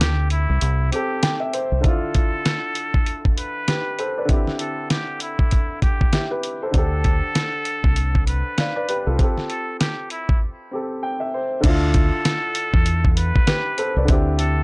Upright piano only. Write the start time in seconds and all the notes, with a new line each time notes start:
Already playing: C4 G4 A4
0.91 C4 G4 A4
1.23 G5
1.40 E5
1.54 C5
1.81 D3 D4
1.86 E4 F4
3.68 G4 B4
3.99 A4 C5
4.18 B4 D5
4.25 D3 C4
4.30 E4 G4
6.13 E4 G4
6.31 G4 B4
6.62 A4 C5
6.71 D3 D4
6.76 G4 A4
8.59 D5 F5
8.76 B4 D5
8.89 G4 B4
9.07 F4 A4
9.17 C4 G4
9.24 A4
10.71 C4 G4 A4
11.03 G5
11.20 E5
11.34 C5
11.60 D3 D4
11.65 E4 F4
13.47 G4 B4
13.78 A4 C5
13.97 B4 D5
14.05 D3 C4
14.10 E4 G4